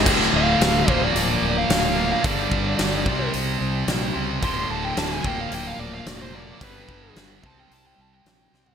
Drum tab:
CC |x---------------|----------------|----------------|----------------|
HH |----o---o---o---|o---o---o---o---|o---o---o---o---|o---o---o---o---|
SD |-o--o-------o---|----o-------o---|----o-------o---|----o-------o-o-|
FT |----------------|----------------|----------------|---------------o|
BD |o-----o---------|o-o---o---------|o-----o---------|o-o---o---------|